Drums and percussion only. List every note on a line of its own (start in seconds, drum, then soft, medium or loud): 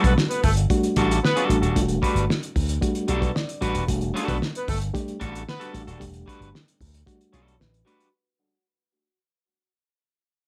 0.04 kick loud
0.04 closed hi-hat medium
0.18 snare loud
0.31 closed hi-hat medium
0.43 kick medium
0.43 open hi-hat medium
0.57 closed hi-hat medium
0.70 kick loud
0.70 closed hi-hat medium
0.83 closed hi-hat soft
0.96 kick medium
0.96 closed hi-hat medium
1.11 closed hi-hat medium
1.25 snare loud
1.37 closed hi-hat medium
1.50 closed hi-hat medium
1.63 closed hi-hat soft
1.76 kick loud
1.76 closed hi-hat loud
1.88 closed hi-hat soft
2.03 kick medium
2.03 closed hi-hat medium
2.16 closed hi-hat medium
2.30 snare loud
2.43 closed hi-hat medium
2.56 kick medium
2.56 open hi-hat medium
2.69 closed hi-hat medium
2.82 kick loud
2.82 closed hi-hat medium
2.95 closed hi-hat medium
3.08 closed hi-hat medium
3.22 kick loud
3.22 closed hi-hat soft
3.36 snare loud
3.49 closed hi-hat medium
3.62 closed hi-hat medium
3.75 closed hi-hat medium
3.88 kick loud
3.88 closed hi-hat loud
4.01 closed hi-hat soft
4.16 closed hi-hat medium
4.28 kick medium
4.28 closed hi-hat medium
4.42 snare medium
4.55 closed hi-hat medium
4.68 kick medium
4.68 open hi-hat medium
4.82 closed hi-hat medium
4.95 kick loud
4.95 closed hi-hat medium
5.08 closed hi-hat soft
5.21 kick medium
5.21 closed hi-hat medium
5.35 closed hi-hat medium
5.49 snare loud
5.61 closed hi-hat soft
5.75 closed hi-hat medium
5.88 closed hi-hat soft
6.01 kick loud
6.01 closed hi-hat loud
6.14 closed hi-hat soft
6.28 kick medium
6.28 closed hi-hat medium
6.42 closed hi-hat soft
6.55 snare medium
6.68 closed hi-hat soft
6.81 kick medium
6.81 open hi-hat medium
6.94 closed hi-hat medium
7.07 kick loud
7.07 closed hi-hat medium
7.21 closed hi-hat soft
7.33 closed hi-hat medium
7.48 closed hi-hat soft
7.61 snare loud
7.74 closed hi-hat soft
7.87 closed hi-hat medium
8.00 closed hi-hat medium